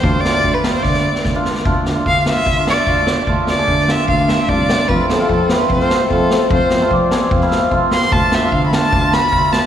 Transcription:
<<
  \new Staff \with { instrumentName = "Accordion" } { \time 4/4 \key d \minor \tempo 4 = 149 r1 | r1 | r1 | r1 |
r4 d''4 f''4~ f''16 r8. | r1 | }
  \new Staff \with { instrumentName = "Violin" } { \time 4/4 \key d \minor c''8 d''8. b'8 c''16 d''4 r4 | r4 \tuplet 3/2 { f''8 f''16 e''8.~ } e''8 d''4. | r8 d''4 e''8 f''8 e''8 d''4 | b'8 a'4 b'8 c''4 a'4 |
c''4 r2 r8 c'''8 | a''8 e''8 \tuplet 3/2 { f''8 b''16 a''8.~ } a''8 b''4 a''8 | }
  \new Staff \with { instrumentName = "Hammered dulcimer" } { \time 4/4 \key d \minor <a d' f'>16 r16 <a d' f'>8 r8 <a d' f'>4 r8. <a d' f'>16 r8 | <a d' f'>8 r16 <a d' f'>16 r8 <a d' f'>8 r16 <a d' f'>16 r8 <a d' f'>8 r8 | <a d' f'>8 r16 <a d' gis'>16 r8 <a d' f'>8 r16 <a d' f'>16 r8 <a d' f'>8 r8 | <a c' f'>8 r16 <a c' f'>16 r8 <a c' f'>8 r16 <a c' f'>16 r8 <a c' f'>8 r8 |
<a c' f'>8 r16 <a c' f'>16 r8 <a c' gis'>8 r16 <a c' e'>16 r8 <a c' f'>8 r8 | <a d' f'>8 r16 <a d' f'>16 r8 <a d' f'>8 r16 <a d' f'>16 r8 <a d' f'>8 r8 | }
  \new Staff \with { instrumentName = "Tuba" } { \clef bass \time 4/4 \key d \minor d,8. d,16 d,8 r8 d4 d,4 | d,8 d,8 d4 d,4 d,4 | d,8 d,8 d4 d,4 c,4 | f,8 f,8 f4 f,4 f,4 |
f,8 f,8 f4 f,4 f,4 | d,8 d,8 d4 d,4 d,4 | }
  \new DrumStaff \with { instrumentName = "Drums" } \drummode { \time 4/4 bd8 sn8 bd8 sn16 sn16 <bd sn>16 sn8 sn16 <bd sn>8 sn16 sn16 | bd8 sn8 bd16 sn16 sn16 sn16 bd8 sn8 bd8 sn8 | bd8 sn8 bd16 sn16 sn8 bd8 sn8 bd8 sn8 | bd8 sn8 bd8 sn8 bd16 sn16 sn8 bd8 sn8 |
bd8 sn16 sn16 bd8 sn16 sn16 bd16 sn16 sn8 bd8 sn16 sn16 | bd8 sn8 bd8 sn8 bd8 sn8 bd8 sn8 | }
>>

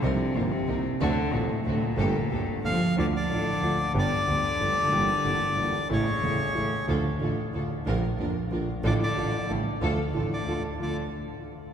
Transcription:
<<
  \new Staff \with { instrumentName = "Bandoneon" } { \time 3/4 \key g \minor \tempo 4 = 184 r2. | r2. | r2 f''4 | \key d \minor d''8 d''2~ d''8 |
d''2.~ | d''2. | cis''2. | r2. |
r2. | d''8 d''4. r4 | r4. d''4 r8 | d''8 r2 r8 | }
  \new Staff \with { instrumentName = "String section" } { \time 3/4 \key g \minor <c' ees' bes'>8 r8 <c' ees' bes'>8 r8 <c' ees' bes'>8 r8 | <c' d' fis'>8 r8 <c' d' fis'>8 r8 <c' d' fis'>8 r8 | <bes g' a'>8 r8 <bes g' a'>8 r8 <bes g' a'>8 r8 | \key d \minor r2. |
r2. | r2. | r2. | <d' f' a'>8 r8 <d' f' a'>8 r8 <d' f' a'>8 r8 |
<d' f' bes'>8 r8 <d' f' bes'>8 r8 <d' f' bes'>8 r8 | <d' f' a'>8 r8 <d' f' a'>8 r8 <cis' g' a'>8 r8 | <d' f' a'>8 r8 <d' f' a'>8 r8 <d' f' a'>8 r8 | <d' f' a'>8 r2 r8 | }
  \new Staff \with { instrumentName = "Grand piano" } { \clef bass \time 3/4 \key g \minor <c, c g bes ees'>8 r8 <g,, g, c g bes ees'>8 r8 <c, c g bes ees'>8 r8 | <d, c d fis a d'>8 r8 <a,, a, c fis a d'>8 r8 <d, c d fis a d'>8 r8 | <g,, g, d a bes g'>8 r8 <d, d a bes g'>8 r8 <g,, g, d a bes g'>8 r8 | \key d \minor <d, d f a f'>8 r8 <a,, a, d f a f'>8 r8 <d, d f a f'>8 r8 |
<g,, g, d g b g'>8 r8 <d, d g b g'>8 r8 <g,, g, d g b g'>8 r32 e,32 f,32 fis,32 | <g,, g, e g bes g'>8 r8 <g,, g, e g bes g'>8 r8 <g,, g, e g bes g'>8 r8 | <a,, a, cis e a e'>8 r8 <e,, e, cis e a e'>8 r8 <a,, a, cis e a e'>8 r8 | <d, d f a f'>8 r8 <a,, a, d f a f'>8 r8 <d, d f a f'>8 r8 |
<bes,, bes, d f bes f'>8 r8 <f,, f, d f bes f'>8 r8 <bes,, bes, d f bes f'>8 r8 | <a,, a, d f a f'>8 r8 <a,, a, d f a f'>8 r8 <a,, a, cis g a e'>8 r8 | <d, d f a f'>8 r8 <a,, a, d f a f'>8 r8 <d, d f a f'>8 r8 | <d, a d' f'>8 r2 r8 | }
  \new Staff \with { instrumentName = "Cello" } { \clef bass \time 3/4 \key g \minor c4 bes,8 c4 r8 | d4 bes,8 a,8 a,8 bes,8~ | bes,2 f4 | \key d \minor d8 d2~ d8 |
d2.~ | d2. | cis2. | r2. |
r2. | d8 d4. r4 | r4. d4 r8 | d8 r2 r8 | }
  \new Staff \with { instrumentName = "Double bass" } { \clef bass \time 3/4 \key g \minor c,8 r8 g,,8 r8 c,8 r8 | d,8 r8 a,,8 r8 d,8 r8 | g,,8 r8 d,8 r8 g,,8 r8 | \key d \minor d,8 r8 a,,8 r8 d,8 r8 |
g,,8 r8 d,8 r8 g,,8 f,,8 | g,,8 r8 g,,8 r8 g,,8 r8 | a,,8 r8 e,,8 r8 a,,8 r8 | d,8 r8 a,,8 r8 d,8 r8 |
bes,,8 r8 f,,8 r8 bes,,8 r8 | a,,8 r8 a,,8 r8 a,,8 r8 | d,8 r8 a,,8 r8 d,8 r8 | d,8 r2 r8 | }
>>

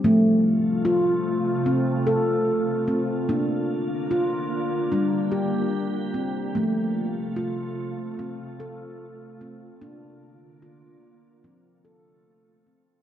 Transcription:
<<
  \new Staff \with { instrumentName = "Handpan" } { \time 4/4 \key f \major \tempo 4 = 74 a4 f'4 c'8 a'4 c'8 | d'4 f'4 d'8 g'4 c'8 | a4 f'4 c'8 a'4 c'8 | d'4 f'4 c'8 a'4 c'8 | }
  \new Staff \with { instrumentName = "Handpan" } { \clef bass \time 4/4 \key f \major f1 | bes2 g2 | f1 | bes2 f2 | }
  \new Staff \with { instrumentName = "Ambient pad" } { \time 4/4 \key f \major << { f'1 | f'2 g'2 | f'1~ | f'2 f'2 | } \\ { <c a>1 | <d bes>1 | <c a>1 | <d bes>2 <c a>2 | } >> }
>>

